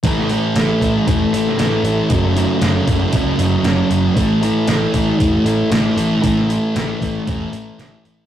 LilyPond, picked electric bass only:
\new Staff \with { instrumentName = "Picked electric bass" } { \clef bass \time 4/4 \key a \mixolydian \tempo 4 = 116 a,,4 a,,8 a,,8 e,,8 a,,8 a,,8 a,,8 | fis,,4 fis,,8 fis,,8 cis,8 fis,,8 fis,,8 fis,,8 | a,,4 a,,8 a,,8 e,,8 a,,8 a,,8 a,,8 | a,,4 a,,8 a,,8 e,,8 a,,8 a,,8 a,,8 | }